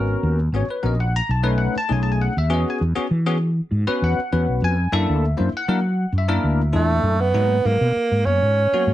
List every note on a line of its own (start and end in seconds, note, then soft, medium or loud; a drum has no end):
0.00 0.14 G#1 medium
0.00 0.38 B3 medium
0.00 0.39 C#4 medium
0.00 0.39 F#4 medium
0.00 0.38 A#4 medium
0.23 0.48 D#2 medium
0.52 0.65 G#1 loud
0.52 0.64 B3 medium
0.52 0.64 C#4 medium
0.52 0.64 F#4 medium
0.52 0.64 G#4 medium
0.52 0.68 C#5 medium
0.69 0.76 F#4 soft
0.69 0.85 B4 medium
0.69 0.76 C#5 soft
0.83 1.20 A#1 medium
0.83 0.94 B3 medium
0.83 0.94 C#4 medium
0.83 0.94 F#4 medium
0.83 0.94 A#4 medium
0.83 0.99 D#5 medium
1.00 1.07 F#4 soft
1.00 1.07 C#5 soft
1.00 1.15 F#5 medium
1.16 1.29 A#5 loud
1.29 1.66 B1 loud
1.29 1.37 D#4 soft
1.29 1.37 G#4 soft
1.29 1.46 A5 medium
1.43 1.75 A3 medium
1.43 1.76 C#4 medium
1.43 1.76 D#4 medium
1.43 1.76 B4 loud
1.43 1.60 C#5 medium
1.58 1.74 F#5 medium
1.76 1.91 A5 loud
1.76 muted fretless electric bass stroke soft
1.89 2.27 B1 loud
1.89 2.32 A3 medium
1.89 2.32 C#4 medium
1.89 2.32 D#4 medium
1.89 2.32 G#4 medium
1.89 2.01 G#5 medium
2.03 2.11 A5 medium
2.12 2.21 G#5 medium
2.22 2.36 F#5 medium
2.37 2.50 D#2 medium
2.37 2.51 E5 medium
2.50 2.63 E2 loud
2.50 2.82 B3 loud
2.50 2.82 C#4 medium
2.50 2.81 F#4 medium
2.50 2.81 G#4 loud
2.50 2.67 D#5 medium
2.70 2.77 G#5 medium
2.81 2.94 E2 medium
2.95 3.06 B3 medium
2.95 3.06 C#4 medium
2.95 3.06 F#4 medium
2.95 3.06 G#4 loud
3.11 3.59 E3 medium
3.11 3.19 G#4 soft
3.26 3.37 B3 loud
3.26 3.36 C#4 medium
3.26 3.37 F#4 medium
3.26 3.37 G#4 loud
3.41 3.49 F#4 soft
3.71 3.84 G#2 loud
3.71 3.80 F#4 soft
3.71 3.80 G#4 soft
3.87 4.19 B3 medium
3.87 4.18 C#4 medium
3.87 4.19 F#4 medium
3.87 4.19 B4 loud
3.87 muted fretless electric bass stroke soft
4.02 4.15 E2 medium
4.02 4.59 F#5 loud
4.18 muted fretless electric bass stroke soft
4.32 4.45 E2 loud
4.32 4.75 B3 medium
4.32 4.75 C#4 medium
4.32 4.75 F#4 medium
4.32 4.75 B4 medium
4.48 4.60 B1 medium
4.62 4.86 F2 medium
4.62 4.93 G#5 loud
4.92 5.05 F#2 loud
4.92 5.24 A#3 medium
4.92 5.24 D4 medium
4.92 5.24 E4 medium
4.92 5.24 A4 loud
4.92 5.51 E5 medium
5.09 5.33 D2 loud
5.37 5.51 F#2 loud
5.37 5.48 A#3 medium
5.37 5.48 D4 medium
5.37 5.48 E4 medium
5.37 5.48 C5 medium
5.52 5.61 E4 soft
5.52 5.61 A#4 soft
5.52 muted fretless electric bass stroke soft
5.57 6.12 F#5 loud
5.68 6.04 F#3 medium
5.68 5.79 A#3 medium
5.68 5.79 D4 medium
5.68 5.79 E4 medium
5.68 5.79 A#4 loud
5.84 5.91 E4 soft
5.84 5.92 C5 soft
6.12 6.37 F#2 medium
6.12 6.21 E4 soft
6.12 6.22 A#4 soft
6.18 7.03 E5 medium
6.28 6.61 A#3 loud
6.28 6.60 D4 medium
6.28 6.60 E4 medium
6.28 6.61 A#4 loud
6.43 6.71 D2 loud
6.73 7.02 E2 loud
6.73 7.16 A#2 medium
6.73 7.22 A3 medium
6.73 7.16 D4 medium
6.73 7.16 E4 medium
6.73 7.16 A4 medium
7.03 7.31 F#2 medium
7.20 7.68 B3 loud
7.34 7.59 G#2 medium
7.34 7.56 F#3 medium
7.34 7.56 A#3 medium
7.34 7.56 B3 medium
7.34 7.56 D#4 loud
7.65 7.78 G#2 medium
7.65 7.76 F#3 medium
7.65 7.77 A#3 medium
7.65 8.27 A#3 medium
7.65 7.77 B3 medium
7.65 7.77 D#4 medium
7.81 7.93 B2 medium
7.81 7.89 B3 soft
7.81 7.89 D#4 soft
7.96 muted fretless electric bass stroke soft
8.11 8.23 G#2 medium
8.25 8.39 F#2 medium
8.25 8.38 F#3 medium
8.25 8.38 A#3 medium
8.25 8.38 B3 medium
8.25 8.94 C#4 medium
8.25 8.38 C#4 medium
8.42 8.67 G#2 medium
8.57 8.65 B3 soft
8.57 8.65 D#4 soft
8.72 8.94 F#3 medium
8.72 8.94 A#3 medium
8.72 8.94 B3 medium
8.72 8.94 F#4 loud
8.72 muted fretless electric bass stroke soft
8.87 8.94 G#2 medium